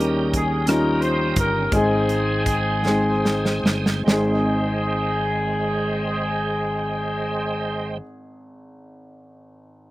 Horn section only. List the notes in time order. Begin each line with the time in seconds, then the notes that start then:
Already playing: C#4 G4
0.34 G#4
0.67 A#4
1.01 C5
1.38 A#4
1.74 C4 D#4 G#4
4.09 G#4